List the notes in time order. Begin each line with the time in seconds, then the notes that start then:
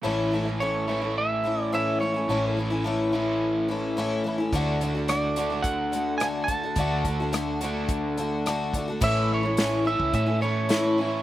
0.03 A1 A2 E3 A3 C#4 E4
0.32 E3 A3 C#4 E4
0.45 A3 C#4 E4
0.60 A2 E3 A3 C#4 E4 C#5
0.88 A2 E3 A3 C#4 E4
1.02 A3 C#4 E4
1.18 E5
1.44 E3 A3 C#4 E4
1.63 D5
1.72 A2 E3 A3 C#4 E4 E5
2.00 E3 A3 C#4 E4 C#5
2.14 C#4 E4
2.18 A3
2.29 A1 A2 E3 A3 C#4 E4
2.57 E3 A3 C#4 E4
2.70 A3 C#4 E4
2.84 A2 E3 A3 C#4 E4
3.12 E3 A3 C#4 E4
3.17 A2
3.68 E3 A3 C#4 E4
3.97 A2 E3 A3 C#4 E4
4.24 E3 A3 C#4
4.28 E4
4.38 A3 C#4 E4
4.53 D2 D3 A3 D4 F#4, kick, closed hi-hat
4.81 D3 A3 D4 F#4, closed hi-hat
4.95 D4 F#4
4.99 A3
5.08 D3 A3 D4 F#4 D5, cross-stick, closed hi-hat
5.36 D3 A3 D4 F#4, closed hi-hat
5.50 A3 D4 F#4
5.62 F#5, kick, closed hi-hat
5.92 D3 A3 D4 F#4, closed hi-hat
6.18 D3 G#5, cross-stick, closed hi-hat
6.22 A3 D4 F#4
6.44 A5
6.48 D3 A3 D4 F#4, kick, closed hi-hat
6.63 A3 D4 F#4
6.76 D2 D3 A3 D4, kick, closed hi-hat
6.80 F#4
7.04 D3 A3 D4 F#4, kick, closed hi-hat
7.20 A3 D4 F#4
7.32 D3 A3 D4 F#4, cross-stick, closed hi-hat
7.61 D3 A3 D4 F#4, closed hi-hat
7.89 kick, closed hi-hat
8.17 D3 A3 D4 F#4, closed hi-hat
8.46 D3 A3 D4 F#4, cross-stick, closed hi-hat
8.74 D3 A3 D4, kick, closed hi-hat
8.79 F#4
8.88 A3 D4 F#4
9.01 A1 A2 E3 A3 C#4 E4 E5, kick, crash
9.32 A3 C#5
9.43 A3 C#4 E4
9.57 A2 E3 A3 C#4 E4, snare, closed hi-hat
9.85 E3 A3 C#4 E4 E5
10.00 C#2, kick
10.14 A2 C#4 E5, kick, closed hi-hat
10.26 A3 C#4 E4
10.41 E3 A3 C#4 E4 C#5
10.69 A2 E3 A3 C#4 E4, snare, closed hi-hat
10.98 E3 A3 C#4 E4